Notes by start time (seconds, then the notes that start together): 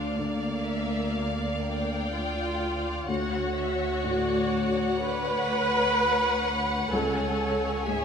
Already playing: D2 D4 C5 D5 F5
0.17 D3 A#3 D5
0.65 E5
1.12 F5
1.62 G5
2.14 F4
3.07 D2 F#4 C#5 F#5
3.57 E5
4.04 A2 D5
5.02 B4 D5
5.52 F#5
6.91 C#2 A4 C#5 G#5
7.87 G#2 G#4 E5